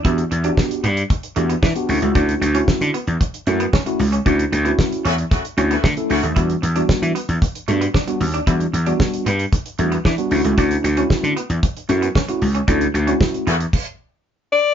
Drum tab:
CC |----------------|----------------|----------------|----------------|
HH |xxxx-xxxxxxx-xox|xxxx-xxxxxxx-xox|xxxx-xxxxxxx-xox|xxxx-xxxxxxx-xox|
SD |----o-------o---|----o-------o---|----o-------o---|----o-------o---|
BD |o---o---o---o---|o---o---o---o---|o---o---o---o---|o---o---o---o---|

CC |----------------|----------------|--------x-------|
HH |xxxx-xxxxxxx-xox|xxxx-xxxxxxx-xox|xxxx-xxx--------|
SD |----o-------o---|----o-------o---|----o-----------|
BD |o---o---o---o---|o---o---o---o---|o---o---o-------|